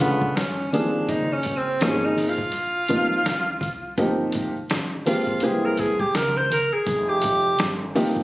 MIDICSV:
0, 0, Header, 1, 6, 480
1, 0, Start_track
1, 0, Tempo, 722892
1, 722, Time_signature, 4, 2, 24, 8
1, 5465, End_track
2, 0, Start_track
2, 0, Title_t, "Tenor saxophone"
2, 0, Program_c, 0, 66
2, 4, Note_on_c, 0, 59, 92
2, 239, Note_on_c, 0, 61, 92
2, 249, Note_off_c, 0, 59, 0
2, 475, Note_off_c, 0, 61, 0
2, 479, Note_on_c, 0, 62, 89
2, 723, Note_on_c, 0, 63, 89
2, 733, Note_off_c, 0, 62, 0
2, 881, Note_on_c, 0, 61, 83
2, 891, Note_off_c, 0, 63, 0
2, 1042, Note_on_c, 0, 60, 88
2, 1052, Note_off_c, 0, 61, 0
2, 1205, Note_on_c, 0, 61, 88
2, 1215, Note_off_c, 0, 60, 0
2, 1363, Note_on_c, 0, 63, 86
2, 1373, Note_off_c, 0, 61, 0
2, 1519, Note_on_c, 0, 65, 99
2, 1529, Note_off_c, 0, 63, 0
2, 2721, Note_off_c, 0, 65, 0
2, 3366, Note_on_c, 0, 65, 85
2, 3607, Note_on_c, 0, 68, 89
2, 3617, Note_off_c, 0, 65, 0
2, 3750, Note_on_c, 0, 70, 90
2, 3760, Note_off_c, 0, 68, 0
2, 3846, Note_on_c, 0, 68, 100
2, 3856, Note_off_c, 0, 70, 0
2, 3985, Note_on_c, 0, 67, 85
2, 3995, Note_off_c, 0, 68, 0
2, 4087, Note_on_c, 0, 70, 93
2, 4097, Note_off_c, 0, 67, 0
2, 4230, Note_on_c, 0, 72, 103
2, 4240, Note_off_c, 0, 70, 0
2, 4327, Note_off_c, 0, 72, 0
2, 4331, Note_on_c, 0, 70, 94
2, 4469, Note_on_c, 0, 68, 85
2, 4479, Note_off_c, 0, 70, 0
2, 4707, Note_on_c, 0, 67, 85
2, 4717, Note_off_c, 0, 68, 0
2, 5184, Note_off_c, 0, 67, 0
2, 5465, End_track
3, 0, Start_track
3, 0, Title_t, "Upright piano"
3, 0, Program_c, 1, 0
3, 0, Note_on_c, 1, 50, 70
3, 2, Note_on_c, 1, 56, 61
3, 5, Note_on_c, 1, 59, 63
3, 5, Note_on_c, 1, 61, 64
3, 10, Note_on_c, 1, 65, 74
3, 180, Note_off_c, 1, 50, 0
3, 182, Note_off_c, 1, 56, 0
3, 183, Note_off_c, 1, 59, 0
3, 183, Note_off_c, 1, 61, 0
3, 185, Note_off_c, 1, 65, 0
3, 484, Note_on_c, 1, 48, 63
3, 487, Note_on_c, 1, 52, 46
3, 488, Note_on_c, 1, 58, 53
3, 490, Note_on_c, 1, 51, 55
3, 491, Note_on_c, 1, 68, 68
3, 528, Note_on_c, 1, 53, 57
3, 534, Note_off_c, 1, 52, 0
3, 834, Note_off_c, 1, 48, 0
3, 836, Note_off_c, 1, 58, 0
3, 837, Note_off_c, 1, 51, 0
3, 838, Note_off_c, 1, 68, 0
3, 856, Note_off_c, 1, 53, 0
3, 1202, Note_on_c, 1, 48, 65
3, 1204, Note_on_c, 1, 53, 57
3, 1208, Note_on_c, 1, 58, 58
3, 1209, Note_on_c, 1, 63, 57
3, 1212, Note_on_c, 1, 66, 60
3, 1255, Note_on_c, 1, 68, 70
3, 1257, Note_off_c, 1, 66, 0
3, 1553, Note_off_c, 1, 48, 0
3, 1554, Note_off_c, 1, 53, 0
3, 1556, Note_off_c, 1, 58, 0
3, 1557, Note_off_c, 1, 63, 0
3, 1580, Note_off_c, 1, 68, 0
3, 1919, Note_on_c, 1, 48, 73
3, 1921, Note_on_c, 1, 53, 62
3, 1924, Note_on_c, 1, 58, 60
3, 1924, Note_on_c, 1, 63, 60
3, 1927, Note_on_c, 1, 65, 73
3, 2100, Note_off_c, 1, 48, 0
3, 2101, Note_off_c, 1, 53, 0
3, 2102, Note_off_c, 1, 58, 0
3, 2103, Note_off_c, 1, 63, 0
3, 2104, Note_off_c, 1, 65, 0
3, 2639, Note_on_c, 1, 48, 72
3, 2642, Note_on_c, 1, 53, 67
3, 2644, Note_on_c, 1, 58, 67
3, 2647, Note_on_c, 1, 63, 66
3, 2648, Note_on_c, 1, 67, 77
3, 2992, Note_off_c, 1, 48, 0
3, 2994, Note_off_c, 1, 53, 0
3, 2994, Note_off_c, 1, 58, 0
3, 2996, Note_off_c, 1, 63, 0
3, 2996, Note_off_c, 1, 67, 0
3, 3358, Note_on_c, 1, 53, 66
3, 3362, Note_on_c, 1, 56, 62
3, 3364, Note_on_c, 1, 58, 65
3, 3366, Note_on_c, 1, 60, 59
3, 3366, Note_on_c, 1, 67, 75
3, 3593, Note_off_c, 1, 56, 0
3, 3594, Note_off_c, 1, 58, 0
3, 3596, Note_off_c, 1, 60, 0
3, 3598, Note_off_c, 1, 67, 0
3, 3601, Note_on_c, 1, 52, 73
3, 3603, Note_on_c, 1, 56, 62
3, 3604, Note_on_c, 1, 58, 70
3, 3606, Note_on_c, 1, 60, 60
3, 3608, Note_on_c, 1, 67, 77
3, 3897, Note_off_c, 1, 52, 0
3, 3898, Note_off_c, 1, 56, 0
3, 3899, Note_off_c, 1, 58, 0
3, 3900, Note_off_c, 1, 60, 0
3, 3901, Note_off_c, 1, 67, 0
3, 4040, Note_off_c, 1, 53, 0
3, 5278, Note_on_c, 1, 48, 85
3, 5279, Note_on_c, 1, 53, 79
3, 5283, Note_on_c, 1, 58, 79
3, 5285, Note_on_c, 1, 63, 76
3, 5286, Note_on_c, 1, 67, 91
3, 5460, Note_off_c, 1, 48, 0
3, 5460, Note_off_c, 1, 53, 0
3, 5462, Note_off_c, 1, 58, 0
3, 5463, Note_off_c, 1, 63, 0
3, 5463, Note_off_c, 1, 67, 0
3, 5465, End_track
4, 0, Start_track
4, 0, Title_t, "Upright bass"
4, 0, Program_c, 2, 32
4, 0, Note_on_c, 2, 37, 95
4, 218, Note_off_c, 2, 37, 0
4, 241, Note_on_c, 2, 31, 90
4, 698, Note_off_c, 2, 31, 0
4, 721, Note_on_c, 2, 30, 99
4, 1177, Note_off_c, 2, 30, 0
4, 1203, Note_on_c, 2, 32, 82
4, 1659, Note_off_c, 2, 32, 0
4, 1685, Note_on_c, 2, 34, 85
4, 2140, Note_off_c, 2, 34, 0
4, 2163, Note_on_c, 2, 36, 89
4, 2619, Note_off_c, 2, 36, 0
4, 2639, Note_on_c, 2, 31, 110
4, 3097, Note_off_c, 2, 31, 0
4, 3123, Note_on_c, 2, 34, 87
4, 3579, Note_off_c, 2, 34, 0
4, 3603, Note_on_c, 2, 36, 95
4, 4059, Note_off_c, 2, 36, 0
4, 4084, Note_on_c, 2, 37, 88
4, 4443, Note_off_c, 2, 37, 0
4, 4559, Note_on_c, 2, 29, 94
4, 5016, Note_off_c, 2, 29, 0
4, 5043, Note_on_c, 2, 31, 96
4, 5465, Note_off_c, 2, 31, 0
4, 5465, End_track
5, 0, Start_track
5, 0, Title_t, "Muted upright bass strokes"
5, 4462, Note_on_c, 9, 29, 48
5, 4529, Note_off_c, 9, 29, 0
5, 5465, End_track
6, 0, Start_track
6, 0, Title_t, "Drums"
6, 2, Note_on_c, 9, 82, 48
6, 8, Note_on_c, 9, 36, 89
6, 68, Note_off_c, 9, 82, 0
6, 75, Note_off_c, 9, 36, 0
6, 142, Note_on_c, 9, 36, 100
6, 142, Note_on_c, 9, 63, 53
6, 142, Note_on_c, 9, 82, 39
6, 208, Note_off_c, 9, 63, 0
6, 208, Note_off_c, 9, 82, 0
6, 209, Note_off_c, 9, 36, 0
6, 241, Note_on_c, 9, 82, 65
6, 246, Note_on_c, 9, 38, 100
6, 248, Note_on_c, 9, 42, 83
6, 308, Note_off_c, 9, 82, 0
6, 312, Note_off_c, 9, 38, 0
6, 314, Note_off_c, 9, 42, 0
6, 382, Note_on_c, 9, 82, 42
6, 448, Note_off_c, 9, 82, 0
6, 479, Note_on_c, 9, 64, 64
6, 479, Note_on_c, 9, 82, 46
6, 490, Note_on_c, 9, 42, 69
6, 546, Note_off_c, 9, 64, 0
6, 546, Note_off_c, 9, 82, 0
6, 557, Note_off_c, 9, 42, 0
6, 626, Note_on_c, 9, 82, 36
6, 693, Note_off_c, 9, 82, 0
6, 721, Note_on_c, 9, 36, 91
6, 722, Note_on_c, 9, 42, 78
6, 722, Note_on_c, 9, 82, 68
6, 787, Note_off_c, 9, 36, 0
6, 788, Note_off_c, 9, 42, 0
6, 788, Note_off_c, 9, 82, 0
6, 868, Note_on_c, 9, 82, 49
6, 935, Note_off_c, 9, 82, 0
6, 951, Note_on_c, 9, 42, 90
6, 965, Note_on_c, 9, 63, 49
6, 965, Note_on_c, 9, 82, 45
6, 971, Note_on_c, 9, 36, 80
6, 1017, Note_off_c, 9, 42, 0
6, 1031, Note_off_c, 9, 63, 0
6, 1031, Note_off_c, 9, 82, 0
6, 1037, Note_off_c, 9, 36, 0
6, 1103, Note_on_c, 9, 82, 52
6, 1169, Note_off_c, 9, 82, 0
6, 1201, Note_on_c, 9, 42, 81
6, 1204, Note_on_c, 9, 82, 60
6, 1208, Note_on_c, 9, 38, 113
6, 1268, Note_off_c, 9, 42, 0
6, 1270, Note_off_c, 9, 82, 0
6, 1275, Note_off_c, 9, 38, 0
6, 1340, Note_on_c, 9, 82, 46
6, 1407, Note_off_c, 9, 82, 0
6, 1438, Note_on_c, 9, 64, 54
6, 1438, Note_on_c, 9, 82, 38
6, 1445, Note_on_c, 9, 46, 53
6, 1505, Note_off_c, 9, 64, 0
6, 1505, Note_off_c, 9, 82, 0
6, 1511, Note_off_c, 9, 46, 0
6, 1582, Note_on_c, 9, 36, 91
6, 1582, Note_on_c, 9, 82, 46
6, 1648, Note_off_c, 9, 36, 0
6, 1648, Note_off_c, 9, 82, 0
6, 1672, Note_on_c, 9, 42, 81
6, 1685, Note_on_c, 9, 82, 55
6, 1738, Note_off_c, 9, 42, 0
6, 1752, Note_off_c, 9, 82, 0
6, 1825, Note_on_c, 9, 82, 38
6, 1891, Note_off_c, 9, 82, 0
6, 1915, Note_on_c, 9, 42, 90
6, 1927, Note_on_c, 9, 82, 47
6, 1928, Note_on_c, 9, 36, 91
6, 1982, Note_off_c, 9, 42, 0
6, 1994, Note_off_c, 9, 36, 0
6, 1994, Note_off_c, 9, 82, 0
6, 2066, Note_on_c, 9, 63, 60
6, 2066, Note_on_c, 9, 82, 42
6, 2133, Note_off_c, 9, 63, 0
6, 2133, Note_off_c, 9, 82, 0
6, 2165, Note_on_c, 9, 38, 92
6, 2165, Note_on_c, 9, 82, 63
6, 2167, Note_on_c, 9, 42, 84
6, 2231, Note_off_c, 9, 38, 0
6, 2231, Note_off_c, 9, 82, 0
6, 2234, Note_off_c, 9, 42, 0
6, 2303, Note_on_c, 9, 82, 42
6, 2370, Note_off_c, 9, 82, 0
6, 2397, Note_on_c, 9, 36, 102
6, 2401, Note_on_c, 9, 64, 62
6, 2401, Note_on_c, 9, 82, 51
6, 2409, Note_on_c, 9, 42, 69
6, 2463, Note_off_c, 9, 36, 0
6, 2467, Note_off_c, 9, 64, 0
6, 2467, Note_off_c, 9, 82, 0
6, 2475, Note_off_c, 9, 42, 0
6, 2548, Note_on_c, 9, 82, 38
6, 2614, Note_off_c, 9, 82, 0
6, 2640, Note_on_c, 9, 36, 89
6, 2640, Note_on_c, 9, 42, 76
6, 2641, Note_on_c, 9, 82, 70
6, 2706, Note_off_c, 9, 36, 0
6, 2706, Note_off_c, 9, 42, 0
6, 2708, Note_off_c, 9, 82, 0
6, 2787, Note_on_c, 9, 82, 45
6, 2854, Note_off_c, 9, 82, 0
6, 2871, Note_on_c, 9, 42, 82
6, 2885, Note_on_c, 9, 63, 48
6, 2885, Note_on_c, 9, 82, 47
6, 2890, Note_on_c, 9, 36, 88
6, 2937, Note_off_c, 9, 42, 0
6, 2952, Note_off_c, 9, 63, 0
6, 2952, Note_off_c, 9, 82, 0
6, 2957, Note_off_c, 9, 36, 0
6, 3024, Note_on_c, 9, 82, 50
6, 3091, Note_off_c, 9, 82, 0
6, 3119, Note_on_c, 9, 42, 80
6, 3126, Note_on_c, 9, 38, 110
6, 3128, Note_on_c, 9, 82, 57
6, 3186, Note_off_c, 9, 42, 0
6, 3193, Note_off_c, 9, 38, 0
6, 3194, Note_off_c, 9, 82, 0
6, 3262, Note_on_c, 9, 82, 46
6, 3328, Note_off_c, 9, 82, 0
6, 3359, Note_on_c, 9, 64, 54
6, 3359, Note_on_c, 9, 82, 40
6, 3363, Note_on_c, 9, 46, 54
6, 3425, Note_off_c, 9, 64, 0
6, 3425, Note_off_c, 9, 82, 0
6, 3429, Note_off_c, 9, 46, 0
6, 3500, Note_on_c, 9, 36, 90
6, 3501, Note_on_c, 9, 82, 48
6, 3566, Note_off_c, 9, 36, 0
6, 3567, Note_off_c, 9, 82, 0
6, 3587, Note_on_c, 9, 42, 83
6, 3604, Note_on_c, 9, 82, 61
6, 3654, Note_off_c, 9, 42, 0
6, 3671, Note_off_c, 9, 82, 0
6, 3745, Note_on_c, 9, 82, 42
6, 3811, Note_off_c, 9, 82, 0
6, 3834, Note_on_c, 9, 42, 88
6, 3846, Note_on_c, 9, 36, 98
6, 3846, Note_on_c, 9, 82, 44
6, 3900, Note_off_c, 9, 42, 0
6, 3912, Note_off_c, 9, 36, 0
6, 3913, Note_off_c, 9, 82, 0
6, 3979, Note_on_c, 9, 36, 96
6, 3987, Note_on_c, 9, 63, 57
6, 3987, Note_on_c, 9, 82, 44
6, 4046, Note_off_c, 9, 36, 0
6, 4053, Note_off_c, 9, 63, 0
6, 4053, Note_off_c, 9, 82, 0
6, 4082, Note_on_c, 9, 38, 95
6, 4085, Note_on_c, 9, 42, 92
6, 4085, Note_on_c, 9, 82, 68
6, 4149, Note_off_c, 9, 38, 0
6, 4151, Note_off_c, 9, 42, 0
6, 4152, Note_off_c, 9, 82, 0
6, 4223, Note_on_c, 9, 82, 46
6, 4290, Note_off_c, 9, 82, 0
6, 4319, Note_on_c, 9, 64, 69
6, 4319, Note_on_c, 9, 82, 50
6, 4327, Note_on_c, 9, 42, 75
6, 4386, Note_off_c, 9, 64, 0
6, 4386, Note_off_c, 9, 82, 0
6, 4394, Note_off_c, 9, 42, 0
6, 4464, Note_on_c, 9, 82, 37
6, 4530, Note_off_c, 9, 82, 0
6, 4558, Note_on_c, 9, 82, 66
6, 4559, Note_on_c, 9, 36, 89
6, 4559, Note_on_c, 9, 42, 81
6, 4624, Note_off_c, 9, 82, 0
6, 4626, Note_off_c, 9, 36, 0
6, 4626, Note_off_c, 9, 42, 0
6, 4706, Note_on_c, 9, 82, 49
6, 4773, Note_off_c, 9, 82, 0
6, 4791, Note_on_c, 9, 42, 91
6, 4804, Note_on_c, 9, 63, 47
6, 4804, Note_on_c, 9, 82, 45
6, 4809, Note_on_c, 9, 36, 83
6, 4858, Note_off_c, 9, 42, 0
6, 4871, Note_off_c, 9, 63, 0
6, 4871, Note_off_c, 9, 82, 0
6, 4876, Note_off_c, 9, 36, 0
6, 4944, Note_on_c, 9, 82, 51
6, 5010, Note_off_c, 9, 82, 0
6, 5037, Note_on_c, 9, 42, 79
6, 5044, Note_on_c, 9, 38, 115
6, 5045, Note_on_c, 9, 82, 59
6, 5104, Note_off_c, 9, 42, 0
6, 5111, Note_off_c, 9, 38, 0
6, 5111, Note_off_c, 9, 82, 0
6, 5180, Note_on_c, 9, 82, 49
6, 5247, Note_off_c, 9, 82, 0
6, 5280, Note_on_c, 9, 64, 59
6, 5280, Note_on_c, 9, 82, 43
6, 5282, Note_on_c, 9, 46, 55
6, 5346, Note_off_c, 9, 64, 0
6, 5346, Note_off_c, 9, 82, 0
6, 5349, Note_off_c, 9, 46, 0
6, 5419, Note_on_c, 9, 82, 49
6, 5420, Note_on_c, 9, 36, 94
6, 5465, Note_off_c, 9, 36, 0
6, 5465, Note_off_c, 9, 82, 0
6, 5465, End_track
0, 0, End_of_file